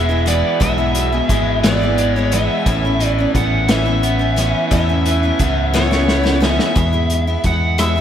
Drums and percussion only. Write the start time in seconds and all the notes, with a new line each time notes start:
0.27 closed hi-hat
0.61 kick, closed hi-hat
0.95 closed hi-hat
1.29 kick, closed hi-hat
1.64 snare, closed hi-hat
1.98 closed hi-hat
2.32 closed hi-hat
2.66 kick, closed hi-hat
3.00 closed hi-hat
3.35 kick, closed hi-hat
3.69 snare, closed hi-hat
4.03 closed hi-hat
4.37 closed hi-hat
4.71 kick, closed hi-hat
5.06 closed hi-hat
5.39 kick, closed hi-hat
5.74 snare
5.92 snare
6.08 snare
6.25 snare
6.42 snare
6.59 snare
6.76 kick, closed hi-hat
7.10 closed hi-hat
7.44 kick, closed hi-hat
7.78 cross-stick, closed hi-hat